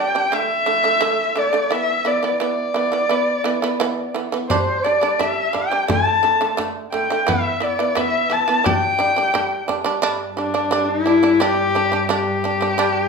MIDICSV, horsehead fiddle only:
0, 0, Header, 1, 2, 480
1, 0, Start_track
1, 0, Tempo, 692042
1, 1192, Time_signature, 4, 2, 24, 8
1, 9074, End_track
2, 0, Start_track
2, 0, Title_t, "Horsehead fiddle"
2, 0, Program_c, 0, 110
2, 0, Note_on_c, 0, 79, 81
2, 232, Note_on_c, 0, 76, 93
2, 243, Note_off_c, 0, 79, 0
2, 959, Note_on_c, 0, 74, 74
2, 969, Note_off_c, 0, 76, 0
2, 1186, Note_on_c, 0, 76, 81
2, 1197, Note_off_c, 0, 74, 0
2, 1437, Note_on_c, 0, 74, 69
2, 1447, Note_off_c, 0, 76, 0
2, 1675, Note_off_c, 0, 74, 0
2, 1682, Note_on_c, 0, 74, 74
2, 2852, Note_off_c, 0, 74, 0
2, 3116, Note_on_c, 0, 72, 69
2, 3351, Note_on_c, 0, 74, 74
2, 3361, Note_off_c, 0, 72, 0
2, 3601, Note_on_c, 0, 76, 76
2, 3612, Note_off_c, 0, 74, 0
2, 3841, Note_on_c, 0, 79, 80
2, 3851, Note_off_c, 0, 76, 0
2, 4079, Note_off_c, 0, 79, 0
2, 4093, Note_on_c, 0, 81, 83
2, 4538, Note_off_c, 0, 81, 0
2, 4803, Note_on_c, 0, 79, 74
2, 5051, Note_on_c, 0, 76, 75
2, 5062, Note_off_c, 0, 79, 0
2, 5297, Note_on_c, 0, 74, 70
2, 5307, Note_off_c, 0, 76, 0
2, 5526, Note_on_c, 0, 76, 81
2, 5536, Note_off_c, 0, 74, 0
2, 5772, Note_on_c, 0, 81, 81
2, 5783, Note_off_c, 0, 76, 0
2, 6007, Note_on_c, 0, 79, 90
2, 6017, Note_off_c, 0, 81, 0
2, 6722, Note_off_c, 0, 79, 0
2, 7188, Note_on_c, 0, 62, 81
2, 7553, Note_on_c, 0, 64, 97
2, 7564, Note_off_c, 0, 62, 0
2, 7911, Note_on_c, 0, 67, 97
2, 7921, Note_off_c, 0, 64, 0
2, 8390, Note_off_c, 0, 67, 0
2, 8410, Note_on_c, 0, 67, 87
2, 9074, Note_off_c, 0, 67, 0
2, 9074, End_track
0, 0, End_of_file